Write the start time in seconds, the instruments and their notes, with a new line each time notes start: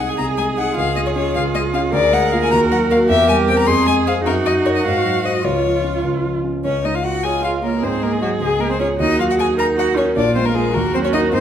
Already playing: grand piano C2 G#3, cello G#4, viola G#4
0.00 grand piano D#4, violin F#5
0.09 violin G#5
0.18 grand piano C2, violin A#5
0.38 grand piano G#3, violin G#5
0.58 grand piano D#4, violin F#5
0.76 grand piano C#2, cello F4, violin F5
0.96 grand piano G#3, violin D#5
1.06 violin C#5
1.15 grand piano C#4, violin C#5
1.35 grand piano C#2, violin F5
1.55 grand piano G#3, violin D#5
1.74 grand piano C#4, violin F5
1.92 grand piano D2, viola G#4, cello A#4, violin D5
2.13 grand piano G#3, violin F#5
2.32 grand piano A#3 F4, violin F5
2.42 violin G#5
2.51 grand piano D#2, viola F#4, violin A#5
2.71 grand piano F#3, violin F#5
2.90 grand piano A#3 A#4, violin F5
3.09 grand piano E2, cello G4, viola A#4, violin E5
3.29 grand piano G3, violin G#5
3.48 grand piano C4 A#4, violin G5
3.59 violin A#5
3.67 grand piano F2, cello G#4, viola G#4, violin C6
3.87 grand piano G#3, violin G#5
4.07 grand piano C4 G#4, violin F5
4.25 grand piano F#2, viola D#4, cello F#4, violin A#4
4.46 grand piano F#3, violin D#5
4.65 grand piano D#4 A#4, violin C#5
4.76 violin D#5
4.85 grand piano G#2, viola F#4, violin F5
5.04 grand piano F#3
5.24 grand piano D#4 C5, violin D#5
5.44 grand piano C#2, cello F4, viola F4, violin C#5
5.64 grand piano F3
5.84 grand piano C#4
6.04 grand piano C#2
6.24 grand piano F3
6.44 grand piano C#4
6.65 grand piano C#2, cello C#4, violin C#5
6.84 grand piano G#3, cello D#4, violin D#5
6.95 cello F4, violin F5
7.04 grand piano F4, cello F#4, violin F#5
7.23 viola F4, cello G#4, grand piano C#5, violin G#5
7.44 cello F4, grand piano G#4, violin F5
7.63 cello A#3, violin A#4, grand piano C#5
7.82 grand piano G#2, cello C4, viola G#4, violin C5
8.01 grand piano G#3, cello A#3, violin A#4
8.12 cello G#3, violin G#4
8.21 cello F#3, grand piano F#4 D#5, violin F#4
8.39 grand piano C#2, cello G#3, violin G#4
8.59 grand piano G#3, cello A#3, violin A#4
8.69 cello C4, violin C5
8.79 cello C#4, grand piano F4 C#5, violin C#5
9.00 grand piano D#2, cello D#4, viola F#4, violin D#5
9.19 grand piano F#3, cello F4, violin F5
9.29 cello F#4, violin F#5
9.38 grand piano F#4, cello G#4, violin G#5
9.58 viola D#4, cello A#4, grand piano A#4, violin A#5
9.77 cello F#4, grand piano F#4, violin F#5
9.96 cello C#4, grand piano A#4, violin C#5
10.16 grand piano A#1, cello D4, viola F4, violin D5
10.35 grand piano G#3, cello C4, violin C5
10.45 cello A#3, violin A#4
10.54 cello G#3, grand piano F4 A#4, violin G#4
10.74 grand piano D#2, cello A#3, viola F#4, violin A#4
10.94 grand piano F#3, cello C4, violin C5
11.04 cello C#4, violin C#5
11.13 grand piano D#4 A#4, cello D#4, violin D#5
11.32 grand piano G#2, cello C4, viola D#4, violin C5